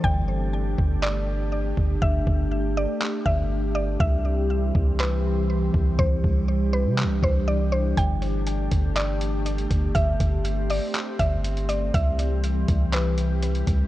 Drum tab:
HH |----------------|----------------|----------------|----------------|
CP |--------x-------|--------x-------|--------x-------|--------x-------|
BD |o-----o-------o-|o-o-------o-----|o-----o-------o-|o-o-------o-----|

HH |x-x-x-x-x-x-xxx-|x-x-x-o-x-x-xxx-|x-x-x-x-x-x-xxx-|
CP |--------x-------|--------x-------|--------x-------|
BD |o-----o-------o-|o-o-------o-----|o-----o-------o-|